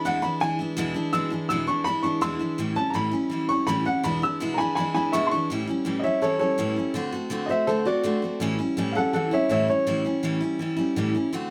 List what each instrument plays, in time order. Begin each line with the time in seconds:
0.05 steel-string acoustic guitar E2 B2 E3 G#3 D4 E4, upright piano F#5
0.22 steel-string acoustic guitar E3 G#3 D4 E4, upright piano B5
0.40 steel-string acoustic guitar E3 G#3 D4 E4, upright piano G#5
0.59 steel-string acoustic guitar E3 G#3 D4 E4
0.77 steel-string acoustic guitar E2 B2 E3 G#3 D4 E4
0.94 steel-string acoustic guitar E3 G#3 D4 E4
1.13 steel-string acoustic guitar E2 B2 E3 G#3 D4 E4, upright piano E6
1.30 steel-string acoustic guitar E3 G#3 D4 E4
1.49 steel-string acoustic guitar E2 B2 E3 G#3 D4 E4, upright piano E6
1.67 steel-string acoustic guitar E3 G#3 D4 E4, upright piano C#6
1.84 steel-string acoustic guitar E3 G#3 D4, upright piano B5
1.88 steel-string acoustic guitar E4
2.03 steel-string acoustic guitar E3 G#3 D4 E4, upright piano C#6
2.21 steel-string acoustic guitar E2 B2 E3 G#3 D4 E4, upright piano C6 E6
2.39 steel-string acoustic guitar E3 G#3 D4 E4
2.58 steel-string acoustic guitar A2 E3 G3 C#4 E4
2.76 steel-string acoustic guitar G3 C#4 E4, upright piano A5
2.90 steel-string acoustic guitar A2, upright piano A#5
2.94 steel-string acoustic guitar E3 G3 C#4 E4, upright piano B5
3.11 steel-string acoustic guitar G3 C#4 E4
3.30 steel-string acoustic guitar E3 G3 C#4 E4
3.49 steel-string acoustic guitar G3 C#4 E4, upright piano C#6
3.67 steel-string acoustic guitar A2 E3 G3 C#4 E4, upright piano B5
3.85 steel-string acoustic guitar G3 C#4 E4, upright piano F#5
4.03 steel-string acoustic guitar E2 B2 E3 G#3 D4 E4, upright piano B5
4.22 steel-string acoustic guitar G#3 D4 E4, upright piano E6
4.40 steel-string acoustic guitar E2 B2 E3 G#3 D4 E4
4.54 upright piano G#5 A#5
4.58 steel-string acoustic guitar E3 G#3 D4 E4, upright piano B5
4.75 steel-string acoustic guitar E3 G#3 D4, upright piano G#5 B5
4.80 steel-string acoustic guitar E4
4.94 steel-string acoustic guitar E3 G#3 D4 E4, upright piano G#5 B5
5.12 steel-string acoustic guitar E2 B2 E3 G#3 D4 E4, upright piano E5 C#6
5.27 upright piano C6
5.31 steel-string acoustic guitar E3 G#3 D4 E4, upright piano C#6
5.50 steel-string acoustic guitar A2 E3 G3 C#4 E4
5.67 steel-string acoustic guitar G3 C#4 E4
5.85 steel-string acoustic guitar A2 E3 G3 C#4 E4
5.99 upright piano C#5 D#5
6.04 steel-string acoustic guitar G3 C#4 E4, upright piano E5
6.22 steel-string acoustic guitar E3 G3 C#4 E4, upright piano A4 C#5
6.39 steel-string acoustic guitar G3 C#4 E4, upright piano A4 C#5
6.58 steel-string acoustic guitar A2 E3 G3 C#4 E4
6.76 steel-string acoustic guitar G3 C#4 E4
6.94 steel-string acoustic guitar D3 A3 C4 F#4
7.12 steel-string acoustic guitar A3 C4 F#4
7.30 steel-string acoustic guitar D3 A3 C4 F#4
7.46 steel-string acoustic guitar F#4, upright piano C5 D#5
7.50 steel-string acoustic guitar A3 C4, upright piano E5
7.67 steel-string acoustic guitar D3 A3 C4 F#4, upright piano A4 C5
7.85 steel-string acoustic guitar A3 C4 F#4, upright piano F#4 D5
8.04 steel-string acoustic guitar D3 A3 C4 F#4
8.22 steel-string acoustic guitar A3 C4 F#4
8.40 steel-string acoustic guitar A2 E3 G3 C#4 E4
8.59 steel-string acoustic guitar G3 C#4 E4
8.77 steel-string acoustic guitar A2 E3 G3 C#4 E4
8.92 steel-string acoustic guitar E4, upright piano A4 F5
8.96 steel-string acoustic guitar G3 C#4, upright piano F#5
9.13 steel-string acoustic guitar E3 G3 C#4 E4, upright piano A4 F#5
9.31 steel-string acoustic guitar G3 C#4 E4, upright piano C#5 E5
9.49 steel-string acoustic guitar A2 E3 G3 C#4 E4, upright piano C#5 E5
9.68 steel-string acoustic guitar G3 C#4 E4, upright piano C#5
9.87 steel-string acoustic guitar A2 E3 G3 C#4 E4
10.05 steel-string acoustic guitar G3 C#4 E4
10.23 steel-string acoustic guitar A2 E3 G3 C#4 E4
10.41 steel-string acoustic guitar G3 C#4 E4
10.59 steel-string acoustic guitar E3 G3 C#4 E4
10.77 steel-string acoustic guitar G3 C#4 E4
10.96 steel-string acoustic guitar A2 E3 G3 C#4 E4
11.15 steel-string acoustic guitar G3 C#4 E4
11.33 steel-string acoustic guitar D3 A3 C4 F#4